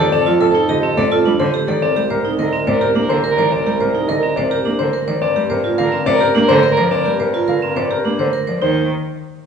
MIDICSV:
0, 0, Header, 1, 6, 480
1, 0, Start_track
1, 0, Tempo, 566038
1, 106, Time_signature, 3, 2, 24, 8
1, 8024, End_track
2, 0, Start_track
2, 0, Title_t, "Grand piano"
2, 0, Program_c, 0, 0
2, 0, Note_on_c, 0, 74, 91
2, 91, Note_off_c, 0, 74, 0
2, 104, Note_on_c, 0, 74, 102
2, 261, Note_off_c, 0, 74, 0
2, 349, Note_on_c, 0, 69, 88
2, 503, Note_off_c, 0, 69, 0
2, 589, Note_on_c, 0, 75, 89
2, 743, Note_off_c, 0, 75, 0
2, 826, Note_on_c, 0, 74, 106
2, 946, Note_on_c, 0, 69, 80
2, 982, Note_off_c, 0, 74, 0
2, 1102, Note_off_c, 0, 69, 0
2, 1185, Note_on_c, 0, 72, 83
2, 1342, Note_off_c, 0, 72, 0
2, 1427, Note_on_c, 0, 74, 84
2, 1532, Note_off_c, 0, 74, 0
2, 1545, Note_on_c, 0, 74, 96
2, 1701, Note_off_c, 0, 74, 0
2, 1786, Note_on_c, 0, 70, 78
2, 1942, Note_off_c, 0, 70, 0
2, 2023, Note_on_c, 0, 75, 76
2, 2181, Note_off_c, 0, 75, 0
2, 2268, Note_on_c, 0, 74, 95
2, 2382, Note_on_c, 0, 70, 76
2, 2423, Note_off_c, 0, 74, 0
2, 2540, Note_off_c, 0, 70, 0
2, 2622, Note_on_c, 0, 72, 85
2, 2781, Note_off_c, 0, 72, 0
2, 2858, Note_on_c, 0, 74, 80
2, 2972, Note_off_c, 0, 74, 0
2, 2984, Note_on_c, 0, 74, 92
2, 3141, Note_off_c, 0, 74, 0
2, 3224, Note_on_c, 0, 70, 74
2, 3381, Note_off_c, 0, 70, 0
2, 3459, Note_on_c, 0, 75, 76
2, 3619, Note_off_c, 0, 75, 0
2, 3699, Note_on_c, 0, 74, 88
2, 3817, Note_on_c, 0, 70, 69
2, 3859, Note_off_c, 0, 74, 0
2, 3979, Note_off_c, 0, 70, 0
2, 4061, Note_on_c, 0, 72, 83
2, 4220, Note_off_c, 0, 72, 0
2, 4304, Note_on_c, 0, 74, 72
2, 4410, Note_off_c, 0, 74, 0
2, 4423, Note_on_c, 0, 74, 97
2, 4581, Note_off_c, 0, 74, 0
2, 4663, Note_on_c, 0, 70, 77
2, 4821, Note_off_c, 0, 70, 0
2, 4902, Note_on_c, 0, 77, 84
2, 5060, Note_off_c, 0, 77, 0
2, 5141, Note_on_c, 0, 74, 118
2, 5259, Note_on_c, 0, 70, 89
2, 5300, Note_off_c, 0, 74, 0
2, 5419, Note_off_c, 0, 70, 0
2, 5497, Note_on_c, 0, 72, 107
2, 5659, Note_off_c, 0, 72, 0
2, 5748, Note_on_c, 0, 74, 85
2, 5851, Note_off_c, 0, 74, 0
2, 5864, Note_on_c, 0, 74, 100
2, 6021, Note_off_c, 0, 74, 0
2, 6107, Note_on_c, 0, 70, 71
2, 6262, Note_off_c, 0, 70, 0
2, 6350, Note_on_c, 0, 77, 73
2, 6503, Note_off_c, 0, 77, 0
2, 6590, Note_on_c, 0, 74, 84
2, 6710, Note_on_c, 0, 70, 73
2, 6743, Note_off_c, 0, 74, 0
2, 6863, Note_off_c, 0, 70, 0
2, 6953, Note_on_c, 0, 72, 78
2, 7104, Note_off_c, 0, 72, 0
2, 7196, Note_on_c, 0, 74, 66
2, 7310, Note_on_c, 0, 72, 89
2, 7345, Note_off_c, 0, 74, 0
2, 7531, Note_off_c, 0, 72, 0
2, 8024, End_track
3, 0, Start_track
3, 0, Title_t, "Soprano saxophone"
3, 0, Program_c, 1, 64
3, 0, Note_on_c, 1, 69, 116
3, 94, Note_off_c, 1, 69, 0
3, 170, Note_on_c, 1, 69, 85
3, 346, Note_off_c, 1, 69, 0
3, 421, Note_on_c, 1, 69, 82
3, 597, Note_off_c, 1, 69, 0
3, 678, Note_on_c, 1, 69, 75
3, 852, Note_off_c, 1, 69, 0
3, 926, Note_on_c, 1, 69, 68
3, 1101, Note_off_c, 1, 69, 0
3, 1178, Note_on_c, 1, 69, 49
3, 1352, Note_off_c, 1, 69, 0
3, 1547, Note_on_c, 1, 70, 44
3, 1722, Note_off_c, 1, 70, 0
3, 1802, Note_on_c, 1, 70, 50
3, 1975, Note_off_c, 1, 70, 0
3, 2051, Note_on_c, 1, 70, 68
3, 2225, Note_off_c, 1, 70, 0
3, 2301, Note_on_c, 1, 70, 80
3, 2476, Note_off_c, 1, 70, 0
3, 2551, Note_on_c, 1, 70, 77
3, 2726, Note_off_c, 1, 70, 0
3, 2799, Note_on_c, 1, 70, 97
3, 2975, Note_off_c, 1, 70, 0
3, 3054, Note_on_c, 1, 70, 76
3, 3229, Note_off_c, 1, 70, 0
3, 3304, Note_on_c, 1, 70, 65
3, 3479, Note_off_c, 1, 70, 0
3, 3552, Note_on_c, 1, 70, 68
3, 3728, Note_off_c, 1, 70, 0
3, 3810, Note_on_c, 1, 70, 57
3, 3983, Note_off_c, 1, 70, 0
3, 4058, Note_on_c, 1, 70, 44
3, 4233, Note_off_c, 1, 70, 0
3, 4432, Note_on_c, 1, 70, 40
3, 4605, Note_off_c, 1, 70, 0
3, 4681, Note_on_c, 1, 70, 57
3, 4855, Note_off_c, 1, 70, 0
3, 4937, Note_on_c, 1, 70, 79
3, 5110, Note_off_c, 1, 70, 0
3, 5191, Note_on_c, 1, 70, 96
3, 5362, Note_off_c, 1, 70, 0
3, 5439, Note_on_c, 1, 70, 99
3, 5611, Note_off_c, 1, 70, 0
3, 5690, Note_on_c, 1, 70, 116
3, 5862, Note_off_c, 1, 70, 0
3, 5939, Note_on_c, 1, 70, 86
3, 6112, Note_off_c, 1, 70, 0
3, 6190, Note_on_c, 1, 70, 66
3, 6363, Note_off_c, 1, 70, 0
3, 6442, Note_on_c, 1, 70, 59
3, 6614, Note_off_c, 1, 70, 0
3, 6696, Note_on_c, 1, 70, 56
3, 6868, Note_off_c, 1, 70, 0
3, 6943, Note_on_c, 1, 70, 40
3, 7116, Note_off_c, 1, 70, 0
3, 8024, End_track
4, 0, Start_track
4, 0, Title_t, "Vibraphone"
4, 0, Program_c, 2, 11
4, 0, Note_on_c, 2, 69, 92
4, 104, Note_on_c, 2, 60, 92
4, 141, Note_off_c, 2, 69, 0
4, 222, Note_on_c, 2, 65, 88
4, 261, Note_off_c, 2, 60, 0
4, 344, Note_on_c, 2, 69, 87
4, 380, Note_off_c, 2, 65, 0
4, 465, Note_on_c, 2, 63, 84
4, 501, Note_off_c, 2, 69, 0
4, 585, Note_on_c, 2, 67, 101
4, 621, Note_off_c, 2, 63, 0
4, 706, Note_on_c, 2, 60, 79
4, 741, Note_off_c, 2, 67, 0
4, 827, Note_on_c, 2, 69, 89
4, 862, Note_off_c, 2, 60, 0
4, 946, Note_on_c, 2, 65, 97
4, 982, Note_off_c, 2, 69, 0
4, 1065, Note_on_c, 2, 62, 76
4, 1102, Note_off_c, 2, 65, 0
4, 1185, Note_on_c, 2, 69, 83
4, 1221, Note_off_c, 2, 62, 0
4, 1304, Note_on_c, 2, 67, 94
4, 1341, Note_off_c, 2, 69, 0
4, 1426, Note_on_c, 2, 69, 79
4, 1461, Note_off_c, 2, 67, 0
4, 1545, Note_on_c, 2, 60, 81
4, 1582, Note_off_c, 2, 69, 0
4, 1666, Note_on_c, 2, 67, 91
4, 1702, Note_off_c, 2, 60, 0
4, 1784, Note_on_c, 2, 72, 80
4, 1822, Note_off_c, 2, 67, 0
4, 1905, Note_on_c, 2, 63, 80
4, 1941, Note_off_c, 2, 72, 0
4, 2026, Note_on_c, 2, 70, 90
4, 2062, Note_off_c, 2, 63, 0
4, 2145, Note_on_c, 2, 60, 73
4, 2182, Note_off_c, 2, 70, 0
4, 2267, Note_on_c, 2, 72, 80
4, 2301, Note_off_c, 2, 60, 0
4, 2386, Note_on_c, 2, 67, 89
4, 2422, Note_off_c, 2, 72, 0
4, 2507, Note_on_c, 2, 62, 65
4, 2542, Note_off_c, 2, 67, 0
4, 2627, Note_on_c, 2, 72, 74
4, 2662, Note_off_c, 2, 62, 0
4, 2747, Note_on_c, 2, 70, 88
4, 2782, Note_off_c, 2, 72, 0
4, 2869, Note_on_c, 2, 72, 76
4, 2902, Note_off_c, 2, 70, 0
4, 2987, Note_on_c, 2, 60, 65
4, 3023, Note_off_c, 2, 72, 0
4, 3108, Note_on_c, 2, 67, 78
4, 3142, Note_off_c, 2, 60, 0
4, 3227, Note_on_c, 2, 72, 72
4, 3263, Note_off_c, 2, 67, 0
4, 3347, Note_on_c, 2, 63, 76
4, 3382, Note_off_c, 2, 72, 0
4, 3467, Note_on_c, 2, 70, 97
4, 3502, Note_off_c, 2, 63, 0
4, 3586, Note_on_c, 2, 60, 68
4, 3622, Note_off_c, 2, 70, 0
4, 3708, Note_on_c, 2, 72, 75
4, 3742, Note_off_c, 2, 60, 0
4, 3826, Note_on_c, 2, 67, 93
4, 3863, Note_off_c, 2, 72, 0
4, 3947, Note_on_c, 2, 62, 68
4, 3982, Note_off_c, 2, 67, 0
4, 4063, Note_on_c, 2, 72, 72
4, 4102, Note_off_c, 2, 62, 0
4, 4183, Note_on_c, 2, 70, 81
4, 4221, Note_off_c, 2, 72, 0
4, 4306, Note_on_c, 2, 72, 73
4, 4341, Note_off_c, 2, 70, 0
4, 4424, Note_on_c, 2, 60, 73
4, 4462, Note_off_c, 2, 72, 0
4, 4547, Note_on_c, 2, 67, 86
4, 4581, Note_off_c, 2, 60, 0
4, 4663, Note_on_c, 2, 72, 76
4, 4702, Note_off_c, 2, 67, 0
4, 4783, Note_on_c, 2, 65, 81
4, 4821, Note_off_c, 2, 72, 0
4, 4904, Note_on_c, 2, 70, 101
4, 4941, Note_off_c, 2, 65, 0
4, 5022, Note_on_c, 2, 60, 85
4, 5061, Note_off_c, 2, 70, 0
4, 5143, Note_on_c, 2, 72, 82
4, 5180, Note_off_c, 2, 60, 0
4, 5264, Note_on_c, 2, 67, 104
4, 5301, Note_off_c, 2, 72, 0
4, 5382, Note_on_c, 2, 62, 97
4, 5421, Note_off_c, 2, 67, 0
4, 5502, Note_on_c, 2, 72, 96
4, 5540, Note_off_c, 2, 62, 0
4, 5623, Note_on_c, 2, 70, 110
4, 5660, Note_off_c, 2, 72, 0
4, 5742, Note_on_c, 2, 72, 85
4, 5781, Note_off_c, 2, 70, 0
4, 5861, Note_on_c, 2, 60, 75
4, 5900, Note_off_c, 2, 72, 0
4, 5982, Note_on_c, 2, 67, 82
4, 6020, Note_off_c, 2, 60, 0
4, 6105, Note_on_c, 2, 72, 80
4, 6141, Note_off_c, 2, 67, 0
4, 6224, Note_on_c, 2, 65, 78
4, 6261, Note_off_c, 2, 72, 0
4, 6341, Note_on_c, 2, 70, 80
4, 6381, Note_off_c, 2, 65, 0
4, 6465, Note_on_c, 2, 60, 72
4, 6500, Note_off_c, 2, 70, 0
4, 6585, Note_on_c, 2, 72, 72
4, 6621, Note_off_c, 2, 60, 0
4, 6705, Note_on_c, 2, 67, 82
4, 6741, Note_off_c, 2, 72, 0
4, 6827, Note_on_c, 2, 62, 68
4, 6862, Note_off_c, 2, 67, 0
4, 6948, Note_on_c, 2, 72, 70
4, 6982, Note_off_c, 2, 62, 0
4, 7065, Note_on_c, 2, 70, 85
4, 7102, Note_off_c, 2, 72, 0
4, 7185, Note_on_c, 2, 72, 67
4, 7222, Note_off_c, 2, 70, 0
4, 7307, Note_on_c, 2, 63, 83
4, 7341, Note_off_c, 2, 72, 0
4, 7529, Note_off_c, 2, 63, 0
4, 8024, End_track
5, 0, Start_track
5, 0, Title_t, "Cello"
5, 0, Program_c, 3, 42
5, 225, Note_on_c, 3, 53, 78
5, 315, Note_off_c, 3, 53, 0
5, 344, Note_on_c, 3, 48, 77
5, 435, Note_off_c, 3, 48, 0
5, 583, Note_on_c, 3, 50, 78
5, 674, Note_off_c, 3, 50, 0
5, 826, Note_on_c, 3, 48, 96
5, 916, Note_off_c, 3, 48, 0
5, 1065, Note_on_c, 3, 55, 83
5, 1155, Note_off_c, 3, 55, 0
5, 1182, Note_on_c, 3, 50, 104
5, 1273, Note_off_c, 3, 50, 0
5, 1421, Note_on_c, 3, 51, 83
5, 1513, Note_off_c, 3, 51, 0
5, 1660, Note_on_c, 3, 55, 64
5, 1752, Note_off_c, 3, 55, 0
5, 1781, Note_on_c, 3, 48, 75
5, 1873, Note_off_c, 3, 48, 0
5, 2023, Note_on_c, 3, 50, 74
5, 2114, Note_off_c, 3, 50, 0
5, 2265, Note_on_c, 3, 48, 90
5, 2355, Note_off_c, 3, 48, 0
5, 2500, Note_on_c, 3, 58, 78
5, 2592, Note_off_c, 3, 58, 0
5, 2621, Note_on_c, 3, 50, 94
5, 2713, Note_off_c, 3, 50, 0
5, 2863, Note_on_c, 3, 51, 79
5, 2954, Note_off_c, 3, 51, 0
5, 3103, Note_on_c, 3, 55, 68
5, 3194, Note_off_c, 3, 55, 0
5, 3224, Note_on_c, 3, 48, 72
5, 3315, Note_off_c, 3, 48, 0
5, 3468, Note_on_c, 3, 50, 73
5, 3557, Note_off_c, 3, 50, 0
5, 3710, Note_on_c, 3, 48, 83
5, 3798, Note_off_c, 3, 48, 0
5, 3946, Note_on_c, 3, 58, 70
5, 4036, Note_off_c, 3, 58, 0
5, 4067, Note_on_c, 3, 50, 89
5, 4156, Note_off_c, 3, 50, 0
5, 4306, Note_on_c, 3, 51, 76
5, 4396, Note_off_c, 3, 51, 0
5, 4545, Note_on_c, 3, 55, 70
5, 4635, Note_off_c, 3, 55, 0
5, 4665, Note_on_c, 3, 48, 68
5, 4755, Note_off_c, 3, 48, 0
5, 4907, Note_on_c, 3, 50, 78
5, 4997, Note_off_c, 3, 50, 0
5, 5146, Note_on_c, 3, 48, 103
5, 5236, Note_off_c, 3, 48, 0
5, 5387, Note_on_c, 3, 58, 94
5, 5477, Note_off_c, 3, 58, 0
5, 5505, Note_on_c, 3, 50, 127
5, 5596, Note_off_c, 3, 50, 0
5, 5745, Note_on_c, 3, 53, 91
5, 5835, Note_off_c, 3, 53, 0
5, 5983, Note_on_c, 3, 55, 64
5, 6074, Note_off_c, 3, 55, 0
5, 6102, Note_on_c, 3, 48, 68
5, 6193, Note_off_c, 3, 48, 0
5, 6340, Note_on_c, 3, 50, 64
5, 6432, Note_off_c, 3, 50, 0
5, 6582, Note_on_c, 3, 48, 83
5, 6673, Note_off_c, 3, 48, 0
5, 6822, Note_on_c, 3, 58, 69
5, 6913, Note_off_c, 3, 58, 0
5, 6942, Note_on_c, 3, 50, 91
5, 7034, Note_off_c, 3, 50, 0
5, 7182, Note_on_c, 3, 53, 73
5, 7274, Note_off_c, 3, 53, 0
5, 7301, Note_on_c, 3, 51, 92
5, 7527, Note_off_c, 3, 51, 0
5, 8024, End_track
6, 0, Start_track
6, 0, Title_t, "Bassoon"
6, 0, Program_c, 4, 70
6, 0, Note_on_c, 4, 41, 84
6, 1415, Note_off_c, 4, 41, 0
6, 1547, Note_on_c, 4, 36, 78
6, 4296, Note_off_c, 4, 36, 0
6, 4428, Note_on_c, 4, 43, 79
6, 7177, Note_off_c, 4, 43, 0
6, 7308, Note_on_c, 4, 39, 74
6, 7530, Note_off_c, 4, 39, 0
6, 8024, End_track
0, 0, End_of_file